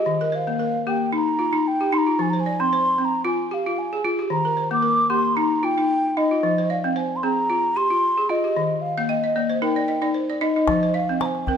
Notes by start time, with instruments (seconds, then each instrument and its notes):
Already playing: balafon G4, flute D#5
0.06 balafon D#3
0.21 balafon A#4
0.32 balafon C5, flute F5
0.47 balafon A#3
0.59 balafon A#4
0.87 balafon A#3 G4, flute G5
1.13 balafon D#4, flute A#5
1.39 balafon F4
1.53 balafon D#4
1.68 flute G5
1.81 balafon G4
1.92 balafon D#4, flute C6
1.98 flute A#5
2.07 balafon F4
2.19 balafon F3, flute G#5
2.30 balafon C5, flute A#5
2.40 flute G#5
2.46 balafon D5
2.60 balafon C4, flute C6
2.73 balafon C5
2.98 balafon C4, flute C6
3.05 flute A#5
3.25 balafon F4, flute G#5
3.51 balafon G4, flute F5
3.66 balafon F4
3.79 flute G#5
3.93 balafon G#4
4.05 balafon F4
4.19 balafon G4
4.30 balafon D#3, flute A#5
4.45 balafon A#4
4.57 balafon C5
4.71 balafon A#3, flute D6
4.82 balafon A#4
5.10 balafon A#3 G4, flute C6
5.36 balafon D#4, flute A#5
5.63 balafon F4, flute G5
5.78 balafon D#4
6.17 balafon D#4, flute D#5
6.31 balafon F4
6.43 balafon F3
6.58 balafon C5
6.70 balafon D5, flute F5
6.84 balafon C4
6.96 balafon C5, flute G#5
7.16 flute C6
7.23 balafon C4 G#4, flute A#5
7.50 balafon F4
7.76 balafon G4, flute C6
7.90 balafon F4
8.18 balafon G#4
8.29 balafon F4, flute D#5
8.44 balafon G4
8.56 balafon D#3
8.81 flute F5
8.98 balafon A#3 F5
9.09 flute D#5, balafon G5
9.24 balafon D#5
9.36 balafon A#3 D5
9.49 balafon C5
9.62 balafon D#4 A#4, flute G5
9.76 balafon D5
9.88 balafon D#5
10.02 balafon D#4 D5
10.14 balafon C5
10.30 balafon D5
10.41 balafon D#4 D#5, flute D#5
10.56 balafon D#4
10.68 balafon F3, calabash thump, calabash click
10.83 balafon C5
10.94 balafon D#5, flute F5, calabash click
11.09 balafon C4
11.21 balafon C5, flute A#5, calabash click
11.26 flute G#5
11.35 calabash click
11.47 balafon C4 A#4, flute G5, calabash thump, calabash click